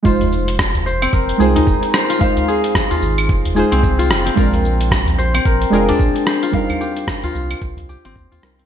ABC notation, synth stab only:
X:1
M:4/4
L:1/8
Q:"Swing 16ths" 1/4=111
K:Fdor
V:1 name="Synth stab"
[A,EFc]4- [A,EFc] [A,EFc]3 | [A,EFc]4- [A,EFc] [A,EFc]3 | [A,DFB]4- [A,DFB] [A,DFB]3 | [G,CEB]4- [G,CEB] z2 [G,CEB] |]